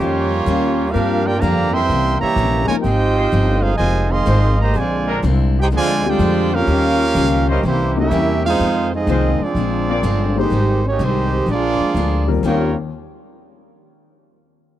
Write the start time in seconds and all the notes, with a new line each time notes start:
Already playing: F2 F3 G3 A#3 C#4 D#4 F4 G4 C#5
0.00 D#3 G3 C#4 F4
0.46 D#2 D#3 G3 C#4 F4
0.91 G2 G3 A#3 C4 D4 F4 G4 A#4 F5
0.96 F3 A#3 D4
1.22 A#3 D4 G4
1.26 F4 A#4 D5 G5
1.37 D3 F3 A#3 G4 D5 F5 A#5
1.41 F2 G2 F3 A#3 D4
1.70 E3 G3 C4 A#4 E5 G5 C6
1.74 A#3 C#4 E4 C5
1.89 C2 C3 E3 A#3 C#4
2.18 E3 G3 A#3 G4 C#5 E5 A#5
2.22 muted upright bass stroke
2.36 A#1 C3 E3 A#3 C#4
2.65 F3 G#3 A#3 F4 A#4 C#5 G#5
2.69 D#4 A#4, muted upright bass stroke
2.80 F3 C4 D#4 F4 G4 C5 D#5 G5
2.84 G#1 C4 D#4 G#4
3.17 G#3 D#4 F4 C5
3.32 G1 F3 C4 D#4 G#4
3.61 G#3 C4 D#4 F4 G#4 C5 F5
3.77 F1 C3 D#3 F3 G#3 C4 F4 C5 D#5 G#5
3.81 D#4 G#4
4.10 D#3 G#3 C4 G#4 D#5 F5 C6
4.26 G#1 F3 G#3 C4 D#4 F4 G#4 C5
4.59 A#3 G4 C5 D#5 A#5
4.74 A#1 A#2 D3 F3 G#3 C4 D4 G#5
4.78 F4 C5 D5
5.07 G#3 C4 D4 A#4
5.23 C2 A#2 G#3 C4 D4
5.59 D#4 G4 G#4 C5 G5
5.71 D2 A#2 D3 F3 G#3 C4 D4
5.76 F4 C5 D5 G#5
6.04 D3 G3 G#3 C4 D4 F4 G4 C5 D5 G5
6.19 F2 A#2 G#3 C4 D4
6.54 A#3 C#4 F4 G4 A#4 F5
6.66 D#2 D#3 F3 G3 C#4 D#4 G4
6.70 F4
7.15 C#2 D#3 G3 C#4 F4
7.48 G3 A#3 C#4 D#4 E4 G4 A#4 C5 D#5
7.63 C2 C3 E3 G3 A#3 C4 C#4 E4 G4 C5
7.96 G3 A#3 C#4 E4 G4 A#4 E5
8.11 E2 C3 E3 A#3 C#4
8.45 G#3 C4 D#4 F4 G#4 C5 F5
8.59 F2 D#3 G#3 C4
8.94 G#3 C4 D#4 F4 G#4 D#5
9.07 C2 F2 D#3 G#3 A#3 C4 D#4 F4 G#4 C5
9.40 F3 G#3 C4 D4 F4 G#4 D5, muted upright bass stroke
9.55 A#1 A#2 G#3 C4 D4
9.89 A#3 C4 D4 F4 G#4 A#4 D5
10.03 G1 A#2 G#3 C4 D4
10.35 D#3 A#3 C4 D#4 G4 G#4 C5
10.39 G#3 D#4 C5
10.50 G#1 G#2 G3 C4 D#4
10.86 A#3 C#4 D#4 G4 C#5
10.99 C2 G#2 D#3 G3 C4 D#4 G4
11.04 G#3 D#4 G4 C5
11.46 A#1 A#2 F3 G#3 D4
11.51 A#3 F4 G#4 D5
11.80 muted upright bass stroke
11.94 D2 A#2 F3 G#3 D4
12.27 D#2 G3 C4 F4 A#4
12.42 D#2 D#3 G3 A#3 C4 C#4 F4 G4 A#4 C#5 G5